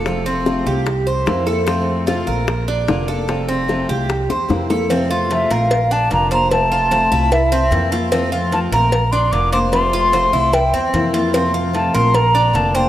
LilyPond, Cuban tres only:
\new Staff \with { instrumentName = "Cuban tres" } { \time 4/4 \key f \major \tempo 4 = 149 a'8 c'4 g'4 c''4 a'8 | c'4 f'8 bes'4 d'4 a'8~ | a'8 c'4 g'4 c''4 a'8 | c'8 f'4 bes'4 d'4 c''8~ |
c''8 f'8 c''8 e'4 c'4 f'8 | c'8 f'4 bes'4 d'4 c''8~ | c''8 f'8 c''8 e'4 c'4 f'8 | c'8 f'4 bes'4 d'4 c''8 | }